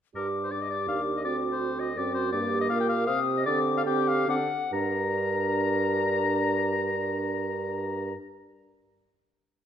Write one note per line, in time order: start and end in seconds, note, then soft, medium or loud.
0.15 0.90 G2 soft
0.15 0.49 D4 soft
0.15 0.49 G4 soft
0.15 0.28 A#4 medium
0.15 0.50 D6 soft
0.43 0.53 C5 medium
0.51 1.26 D4 soft
0.51 1.26 G4 soft
0.51 0.63 D5 medium
0.51 1.23 D6 soft
0.62 0.69 D#5 soft
0.70 0.88 D5 medium
0.88 1.26 D#2 soft
0.88 1.01 F5 medium
1.17 1.21 D#5 soft
1.24 1.99 D2 soft
1.24 1.96 C4 soft
1.24 1.97 F#4 soft
1.24 1.37 D5 medium
1.24 1.95 D6 soft
1.52 1.81 C5 medium
1.79 1.98 D#5 medium
1.97 2.33 F#2 soft
1.97 2.34 C4 medium
1.97 2.32 F#4 soft
1.97 2.14 D5 medium
1.97 2.32 D6 soft
2.14 2.32 C5 medium
2.32 2.72 G2 medium
2.32 3.09 A#3 medium
2.32 3.06 G4 medium
2.32 2.60 D5 medium
2.32 3.09 D6 medium
2.61 2.65 D#5 medium
2.70 3.09 A#2 medium
2.70 2.79 F5 medium
2.80 2.88 G5 medium
2.89 3.06 F5 medium
3.07 3.47 C3 medium
3.07 3.46 C4 medium
3.07 3.45 G4 medium
3.07 3.20 F5 medium
3.07 3.45 D#6 medium
3.37 3.42 D#5 medium
3.46 4.27 D3 medium
3.46 3.86 C4 medium
3.46 3.85 G4 medium
3.46 3.59 D5 medium
3.46 3.85 D6 medium
3.77 3.82 F5 medium
3.86 4.27 C4 medium
3.86 4.30 G4 medium
3.86 4.09 G5 medium
3.86 4.27 D6 medium
4.08 4.29 F5 medium
4.28 4.50 D3 medium
4.28 4.38 C4 medium
4.28 4.50 A4 medium
4.28 4.72 F#5 medium
4.28 4.35 D6 medium
4.72 8.13 G2 medium
4.72 8.13 D4 medium
4.72 8.13 A#4 medium
4.72 8.13 A#5 medium